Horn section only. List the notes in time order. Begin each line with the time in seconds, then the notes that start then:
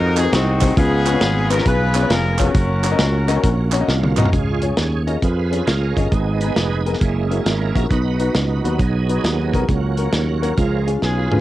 Already playing: D#4 F#4 A#4
0.18 G#4
0.33 C4 D#4 F#4
0.77 B3 F4 G#4
1.51 A#4
1.67 F4 G#4 B4
2.12 A#4
2.41 C#4 F#4 A#4
11.03 C#4 F4 G#4